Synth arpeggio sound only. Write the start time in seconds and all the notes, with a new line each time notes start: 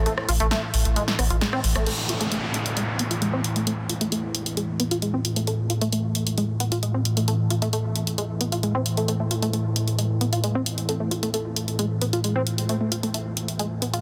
0.06 A3
0.29 F4
0.40 A3
0.51 A3
0.96 G#3
1.19 B3
1.30 F4
1.41 G#3
1.53 C4
1.76 A3
1.87 A3
2.09 F4
2.21 A3
2.32 A3
2.77 G#3
2.99 B3
3.11 F4
3.22 G#3
3.33 C4
3.56 A3
3.67 A3
3.89 F4
4.01 A3
4.12 A3
4.57 G#3
4.80 B3
4.91 F4
5.02 G#3
5.14 C4
5.36 A3
5.47 A3
5.70 F4
5.82 A3
5.93 A3
6.38 G#3
6.60 B3
6.72 F4
6.83 G#3
6.94 C4
7.17 A3
7.28 A3
7.50 F4
7.62 A3
7.73 A3
8.18 G#3
8.41 B3
8.52 F4
8.63 G#3
8.75 C4
8.97 A3
9.08 A3
9.20 A3
9.31 F4
9.42 A3
9.53 A3
9.98 G#3
10.21 B3
10.33 F4
10.44 G#3
10.55 C4
10.89 A3
11.00 A3
11.11 F4
11.23 A3
11.34 A3
11.79 G#3
12.01 B3
12.13 F4
12.24 G#3
12.36 C4
12.69 A3
12.81 A3
12.92 F4
13.03 A3
13.14 A3
13.59 G#3
13.82 B3
13.93 F4